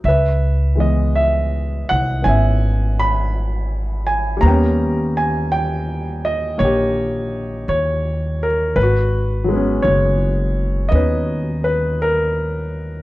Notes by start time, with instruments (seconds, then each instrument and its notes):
0.04 upright bass C#2, grand piano E5
0.08 grand piano B4
0.75 grand piano E3 G#3 B3
0.80 grand piano D#5
1.15 grand piano E5
1.89 upright bass C2, grand piano F#5
2.22 upright bass G#1, grand piano B3 C#4 E4 G#5
2.28 grand piano E5
2.99 grand piano B5
4.07 grand piano G#5
4.37 grand piano G3 A#3
4.41 upright bass D#2, grand piano B3 A#5
4.47 grand piano C#4 G5
5.17 grand piano G#5
5.52 grand piano G5
6.25 grand piano D#5
6.58 upright bass A#1, grand piano A#3 C#5
6.65 grand piano G4
7.68 upright bass D#2, grand piano C#5
8.43 grand piano A#4
8.76 upright bass G#1, grand piano B4
8.83 grand piano F#4
9.44 grand piano F#3 G#3
9.52 grand piano B3 C#4
9.82 upright bass F#1, grand piano C#5
10.89 upright bass D#2, grand piano B3 C#4 D#5
10.94 grand piano D#4 B4
11.64 grand piano B4
12.02 grand piano A#4